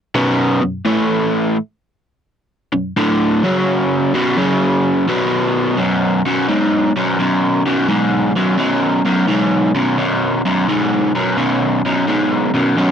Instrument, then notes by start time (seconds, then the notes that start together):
overdriven electric guitar
0.15 B1 F#2 B2
0.61 B1 F#2
0.85 A2 E3 A3
2.72 B1 F#2
2.97 D2 A2 D3
3.44 F#2 C#3 F#3
4.14 B1 F#2 B2
4.37 F#2 C#3 F#3
5.08 B1 F#2 B2
5.77 B1 F#2
6.26 B1 F#2
6.49 B1 G#2
6.96 B1 F#2
7.19 B1 F#2
7.66 B1 F#2
7.88 B1 G#2
8.36 B1 F#2
8.58 B1 F#2
9.05 B1 F#2
9.28 B1 G#2
9.75 B1 F#2
9.98 B1 F#2
10.46 B1 F#2
10.68 B1 G#2
11.15 B1 F#2
11.37 B1 F#2
11.85 B1 F#2
12.07 B1 G#2
12.54 B1 F#2
12.77 B1 F#2